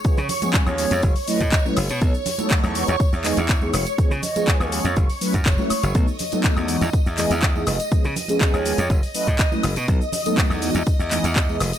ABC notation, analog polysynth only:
X:1
M:4/4
L:1/16
Q:1/4=122
K:E
V:1 name="Analog polysynth"
[^E,G,B,CG] z2 [E,G,B,CG]3 [E,G,B,CG] z3 [F,A,C=EB] z2 [F,A,CEB] z2 | [F,A,B,DA] z2 [F,A,B,DA]3 [E,G,B,DF] z3 [E,G,B,DG] z2 [E,G,B,DG] z2 | [^E,G,B,CG] z2 [E,G,B,CG]3 [E,G,B,CG] z3 [F,A,C=EB] z2 [F,A,CEB] z2 | [F,A,B,DA] z2 [F,A,B,DA]3 [E,G,B,DF] z3 [E,G,B,DG] z2 [E,G,B,DG] z2 |
[^E,G,B,CG] z2 [E,G,B,CG]3 [E,G,B,CG] z3 [F,A,C=EB] z2 [F,A,CEB] z2 | [F,A,B,DA] z2 [F,A,B,DA]3 [E,G,B,DF] z3 [E,G,B,DG] z2 [E,G,B,DG] z2 |]